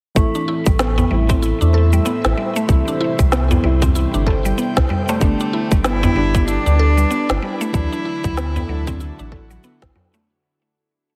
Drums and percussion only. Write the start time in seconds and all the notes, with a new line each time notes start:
0.16 kick, shaker
0.35 darbuka ka, shaker
0.49 darbuka ka
0.66 kick, darbuka tek, shaker
0.79 snare, shaker
0.98 darbuka ka, darbuka dum, shaker
1.29 kick, darbuka tek, shaker
1.43 shaker
1.62 shaker
1.73 darbuka ka
1.93 shaker
2.05 darbuka ka, shaker
2.24 snare, darbuka tek, shaker
2.56 shaker
2.69 kick, shaker
2.88 darbuka ka, shaker
3.01 darbuka ka
3.19 kick, darbuka tek, shaker
3.32 snare, shaker
3.51 darbuka ka, darbuka dum, shaker
3.82 kick, darbuka tek, darbuka dum, shaker
3.95 shaker
4.14 shaker
4.27 kick, darbuka tek
4.45 shaker
4.58 shaker
4.77 kick, snare, shaker
4.89 darbuka tek, darbuka dum
5.09 darbuka tek, shaker
5.21 kick, shaker
5.40 darbuka ka, shaker
5.54 darbuka ka
5.72 kick, darbuka tek, shaker
5.84 snare, shaker
6.03 darbuka ka, darbuka dum, shaker
6.35 kick, darbuka tek, shaker
6.48 shaker
6.67 shaker
6.79 darbuka ka
6.98 shaker
7.11 darbuka ka, shaker
7.29 snare, darbuka tek, shaker
7.61 shaker
7.74 kick, shaker
7.93 darbuka ka, shaker
8.05 darbuka ka
8.24 kick, darbuka tek, shaker
8.37 snare, shaker
8.56 darbuka ka, darbuka dum, shaker
8.87 kick, darbuka tek, darbuka dum, shaker
9.00 shaker
9.19 darbuka ka, shaker
9.32 kick, darbuka tek
9.51 shaker
9.64 shaker
9.82 kick, snare, shaker
9.95 darbuka tek, darbuka dum
10.14 darbuka tek, shaker